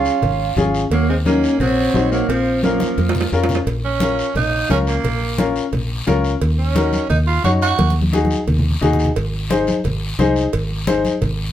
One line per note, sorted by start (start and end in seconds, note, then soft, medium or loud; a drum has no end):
0.00 0.12 C#4 medium
0.00 0.53 C#4 medium
0.00 0.12 F4 medium
0.00 0.53 F4 medium
0.00 0.13 G#4 medium
0.05 short guiro medium
0.22 0.50 G#1 medium
0.22 cowbell medium
0.22 low conga medium
0.22 long guiro medium
0.56 0.84 G#1 loud
0.56 0.81 C#4 medium
0.56 0.81 F4 medium
0.56 0.81 G#4 loud
0.56 high conga medium
0.56 low conga medium
0.56 short guiro medium
0.74 short guiro medium
0.90 1.46 D#2 medium
0.90 1.08 F#3 medium
0.90 1.08 A#3 medium
0.90 cowbell loud
0.90 long guiro medium
1.09 1.17 G#3 medium
1.09 1.14 C4 loud
1.25 1.58 A#3 medium
1.25 1.58 C#4 loud
1.25 1.50 D#4 medium
1.25 1.50 F#4 medium
1.25 1.50 A#4 medium
1.25 high conga medium
1.25 short guiro medium
1.44 short guiro medium
1.60 1.88 A#1 medium
1.60 2.09 F#3 medium
1.60 2.08 C4 loud
1.60 cowbell medium
1.60 low conga medium
1.60 long guiro medium
1.94 2.22 A#1 loud
1.94 2.18 D#4 medium
1.94 2.19 F#4 medium
1.94 2.19 C5 medium
1.94 high conga medium
1.94 low timbale medium
1.94 short guiro medium
2.12 2.28 F#3 medium
2.12 2.28 A#3 medium
2.12 short guiro medium
2.29 2.84 A#1 medium
2.29 2.61 F3 medium
2.29 2.61 C4 medium
2.29 cowbell loud
2.29 long guiro medium
2.63 3.28 F3 medium
2.63 3.28 A#3 medium
2.63 2.87 C#4 medium
2.63 2.88 F4 medium
2.63 2.88 A#4 medium
2.63 high conga medium
2.63 high timbale medium
2.63 short guiro medium
2.80 high conga medium
2.80 short guiro medium
2.98 3.25 F2 medium
2.98 cowbell medium
2.98 high conga medium
2.98 long guiro medium
3.09 low timbale loud
3.15 low conga medium
3.21 low timbale medium
3.32 3.60 F2 medium
3.32 3.56 C#4 medium
3.32 3.57 F4 medium
3.32 3.57 A#4 loud
3.32 short guiro medium
3.44 low timbale medium
3.49 low conga medium
3.49 short guiro medium
3.55 low timbale loud
3.67 4.22 A#1 medium
3.67 cowbell loud
3.67 long guiro medium
3.84 4.32 C#4 medium
3.84 high conga soft
4.00 4.25 C#4 medium
4.00 4.25 F4 medium
4.00 4.26 A#4 medium
4.00 cowbell medium
4.00 high conga loud
4.00 short guiro medium
4.19 short guiro medium
4.35 4.63 A#1 medium
4.35 4.68 D#4 loud
4.35 cowbell medium
4.35 high conga soft
4.35 low conga medium
4.35 long guiro medium
4.69 4.98 C#2 medium
4.69 4.94 C#4 medium
4.69 4.78 C#4 medium
4.69 4.94 F4 medium
4.69 4.94 A#4 medium
4.69 cowbell medium
4.69 high conga medium
4.69 short guiro medium
4.87 5.52 A#3 medium
4.87 short guiro medium
5.04 5.59 A#1 medium
5.04 cowbell loud
5.04 low conga medium
5.04 long guiro medium
5.21 high conga soft
5.38 5.63 C#4 medium
5.38 5.63 F4 medium
5.38 5.63 A#4 medium
5.38 cowbell medium
5.38 high conga loud
5.38 short guiro medium
5.56 short guiro medium
5.72 6.00 A#1 medium
5.72 cowbell medium
5.72 high conga soft
5.72 low conga medium
5.72 long guiro medium
6.07 6.35 C#2 medium
6.07 6.31 C#4 loud
6.07 6.31 F4 medium
6.07 6.32 A#4 loud
6.07 cowbell medium
6.07 high conga medium
6.07 low timbale medium
6.07 short guiro medium
6.24 short guiro medium
6.42 6.97 D#2 medium
6.42 cowbell loud
6.42 long guiro medium
6.59 7.07 C#4 medium
6.59 high conga soft
6.76 7.00 D#4 medium
6.76 7.00 F#4 medium
6.76 7.00 A#4 medium
6.76 cowbell medium
6.76 high conga loud
6.76 short guiro medium
6.93 high conga medium
6.93 short guiro medium
7.10 7.38 D#2 medium
7.10 7.18 D#4 medium
7.10 cowbell medium
7.10 high conga soft
7.10 low conga medium
7.10 long guiro medium
7.27 7.43 F4 loud
7.44 7.72 F#2 medium
7.44 7.68 D#4 medium
7.44 7.69 F#4 medium
7.44 7.52 F#4 medium
7.44 7.69 C#5 medium
7.44 cowbell medium
7.44 high conga medium
7.44 short guiro medium
7.62 7.94 F#4 loud
7.62 short guiro medium
7.79 8.34 D#2 loud
7.79 cowbell loud
7.79 high conga medium
7.79 long guiro medium
7.90 high conga medium
8.02 high conga medium
8.13 8.37 D#4 medium
8.13 8.37 F#4 medium
8.13 8.37 G#4 loud
8.13 cowbell medium
8.13 high conga medium
8.13 short guiro medium
8.25 high conga medium
8.30 short guiro medium
8.47 8.75 D#2 medium
8.47 cowbell medium
8.47 low conga medium
8.47 long guiro medium
8.59 low conga medium
8.70 low conga medium
8.81 9.09 D#2 medium
8.81 9.06 D#4 loud
8.81 9.06 F#4 medium
8.81 9.06 G#4 loud
8.81 cowbell medium
8.81 low conga medium
8.81 short guiro medium
8.93 low conga medium
8.99 short guiro medium
9.05 low conga medium
9.16 9.71 G#1 loud
9.16 cowbell loud
9.16 long guiro medium
9.33 high conga soft
9.50 9.74 D#4 medium
9.50 9.74 G#4 medium
9.50 9.75 C5 loud
9.50 cowbell medium
9.50 high conga medium
9.50 short guiro medium
9.67 high conga medium
9.67 short guiro medium
9.84 10.12 G#1 medium
9.84 cowbell medium
9.84 high conga soft
9.84 low conga medium
9.84 long guiro medium
10.19 10.46 C2 medium
10.19 10.43 D#4 loud
10.19 10.43 G#4 medium
10.19 10.43 C5 loud
10.19 cowbell medium
10.19 high conga medium
10.19 short guiro medium
10.36 short guiro medium
10.53 11.08 G#1 medium
10.53 cowbell loud
10.53 long guiro medium
10.70 high conga soft
10.87 11.11 D#4 medium
10.87 11.12 G#4 medium
10.87 11.12 C5 loud
10.87 cowbell medium
10.87 high conga loud
10.87 short guiro medium
11.05 high conga medium
11.05 short guiro medium
11.22 11.49 G#1 loud
11.22 cowbell medium
11.22 high conga soft
11.22 low conga medium
11.22 long guiro medium